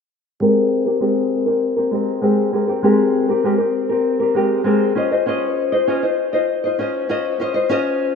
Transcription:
nylon-string guitar
0.40 G#3 C4 G4 A#4
0.86 C4 G4 A#4
1.00 G#3 C4 G4 A#4
1.46 C4 G4 A#4
1.76 C4 G4 A#4
1.91 G#3 C4 G4 A#4
2.21 G#3 C4 G4 A#4
2.53 G#3 C4 G4 A#4
2.67 C4 G4 A#4
2.83 G#3 C4 G4 A#4
3.29 C4 G4 A#4
3.44 G#3 C4 G4 A#4
3.58 C4 G4 A#4
3.89 C4 G4 A#4
4.19 C4 G4 A#4
4.34 G#3 C4 G4 A#4
4.64 G#3 C4 G4 A#4
4.95 C#4 F4 C5 D#5
5.11 F4 C5 D#5
5.26 C#4 F4 C5 D#5
5.72 F4 C5 D#5
5.87 C#4 F4 C5 D#5
6.03 F4 C5 D#5
6.33 F4 C5 D#5
6.64 F4 C5 D#5
6.79 C#4 F4 C5 D#5
7.09 C#4 F4 C5 D#5
7.40 C#4 F4 C5 D#5
7.54 F4 C5 D#5
7.69 C#4 F4 C5 D#5

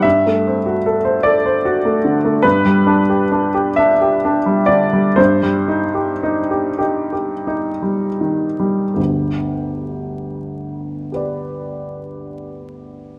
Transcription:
upright piano
0.02 G2 E5
0.26 A3
0.47 C4
0.66 F#4
0.86 A4
1.05 C5
1.23 A4 D5
1.46 C5
1.65 F#4
1.85 A3
2.05 D3
2.25 A3
2.43 G2 B4
2.65 G3
2.87 D4
3.10 G4
3.32 D4
3.54 G4
3.76 D4 E5
4.01 G4
4.25 D4
4.46 G3
4.66 D3 D5
4.93 G3
5.16 G2 C5
5.43 G3
5.68 D#4
5.95 G4
6.23 D#4
6.51 G4
6.78 D#4 G4
7.12 G4
7.47 D#4
7.82 G3
8.21 D#3
8.60 G3
8.94 G1 D2 G4
11.12 G4 B4
11.16 D5

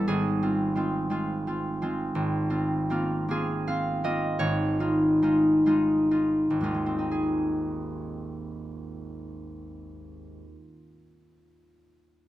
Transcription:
harp
Already playing: A4
0.08 G#1 G#4
0.42 C4 F4
0.75 G#3 C4 F4
1.10 G#3 C4 F4
1.47 C4 F4
1.82 G#3 C4 F4
2.15 G#1
2.50 C4 F4
2.90 A#3 C4 F4
3.28 A#3 C4 F4 G#4
3.68 C4 F4 F5
4.04 A#3 C4 F4 D#5
4.39 G#1 C#5
4.80 D#4 F4
5.22 G#3 D#4 F4
5.66 G#3 D#4 F4
6.11 D#4 F4
6.50 G#1
6.61 D#2 G#3 D#4 F4
6.74 G#3
6.86 C4
6.99 D#4
7.11 G#4

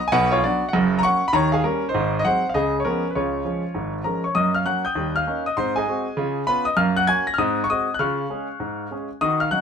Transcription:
grand piano
0.08 G#5
0.12 B1 B2 B4 F#5
0.31 F4 C#5
0.44 F#3 B3 D4 F#4 D5
0.69 F#5
0.73 F#1 F#2
0.99 A#5
1.03 F#3 A#3 C#4 F#5 C#6
1.28 B5
1.33 D#2 D#3 C#5 A#5
1.52 G#4 F5
1.64 G3 A#3 C#4 A#4
1.89 D#4 C5
1.94 G#1 G#2
2.19 D#5
2.24 F#3 G#3 C4 C5 F#5
2.49 F5
2.54 C#2 C#3 G#4 D#5
2.80 C#5
2.85 F3 G#3 B3 C#4 A#4
3.11 B4
3.15 C#2 C#3 F4 C#5
3.45 F3 G#3 C#4
3.74 G#1 G#2
4.04 F3 G#3 C#4 A#4 A#5
4.24 C#5 C#6
4.35 F#2 A#3 D#5 D#6
4.54 F5 F6
4.65 F#3 A#3 C#4 F#5 F#6
4.85 G5 D#6 G6
4.95 D#2 G3
5.16 F5 F6
5.27 A#3 C#4 D#4
5.46 D#5 D#6
5.57 G#2 C4 C5 C6
5.76 G#4 D#5 G#5
5.88 G#3 C4 F#4
6.17 C#3 F4
6.47 B3 C#4 F4 B4 B5
6.65 D#5 D#6
6.77 F#2 A#3 F5 F6
6.96 F#5 F#6
7.07 A#3 C#4 F#4 G#5 G#6
7.27 A#6
7.34 F6
7.38 G#2 C4 D#5 D#6
7.64 C#6
7.70 G#3 C4 F#4 D#5 D#6
7.94 F#6
7.99 C#3 F4 F5 C#6 F6
8.30 G#3 C#4 G#4
8.60 G#2
8.91 G#3 C#4 G#4
9.21 D#3 F#4 D#5 D#6
9.40 F5 F6
9.51 F#3 C#4 D#4 F#5 F#6

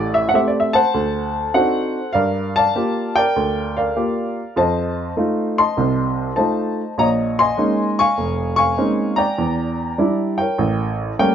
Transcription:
upright piano
Already playing: A1 A2 G4 D5
0.14 E5
0.29 F#5
0.34 A3 C4 G4 E5
0.48 D5
0.60 E5
0.73 C5 F#5 A5
0.94 D2
1.54 C4 D4 D#4 F#4 A4 C5 F#5
2.13 G2 A#4 D5 F5
2.56 D5 F5 A5
2.75 A#3 F4 G4
3.16 A#4 D5 G5
3.36 D2
3.77 A#4 D5 F5
3.96 A#3 F4 G4
4.56 F2 C5 D#5 A5
5.17 A3 D#4 F4
5.58 D#5 A5 C6
5.77 C2 C3
6.36 A3 D#4 F4 C5 D#5 A5
6.98 A#1 C#5 D#5 A#5
7.39 D#5 G#5 C6
7.57 G#3 A#3 C#4 D#4
7.99 F5 G#5 C#6
8.18 F1
8.56 F5 G#5 C#6
8.77 G#3 A#3 C4 C#4 D#4
9.16 D5 G5 A#5
9.38 E2
9.98 G3 D4 E4
10.38 A#4 C#5 G5
10.58 A1
11.19 G3 A3 A#3 C#4 A#4 C#5 G5

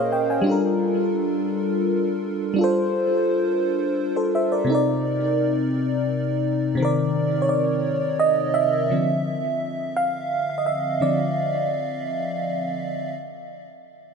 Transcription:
fm electric piano
Already playing: A#2 A#3 C#4 G#4 A#4 C5 C#5 D#5 F5
0.12 D#5 G5
0.30 F5 G#5
0.41 G3 D4
0.47 F4 A4
0.51 A#4
2.54 G3 D4
2.59 F4 A4
2.64 C5
4.16 A4 C5
4.35 C5 E5
4.52 A#4 D5
4.65 C3 C4
4.70 D#4 A#4
4.75 D5
6.75 C3 C4
6.80 D#3 A#4
6.85 D5
7.42 C#5
7.49 D5
8.20 D#5
8.54 E5
8.90 D3 F3 C4
9.97 F5
10.58 D#5
10.66 E5
11.01 D3 F3 C4 D5

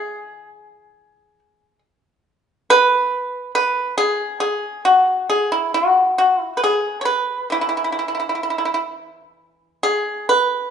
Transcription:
pipa
Already playing: E3 G#4
2.70 B4
3.55 B4
3.98 G#4
4.40 G#4
4.85 F#4
5.30 G#4
5.52 E4
5.74 F#4
6.18 F#4
6.40 E4
6.57 B4
6.64 G#4
7.01 C#5
7.05 B4
7.50 E3 E4
7.61 E4
7.69 E4
7.77 E4
7.84 E4
7.92 E4
7.99 E4
8.08 E4
8.15 E4
8.20 E4
8.29 E4
8.35 E4
8.43 E4
8.50 E4
8.58 E4
8.65 E4
8.74 E4
9.83 G#4
10.29 B4

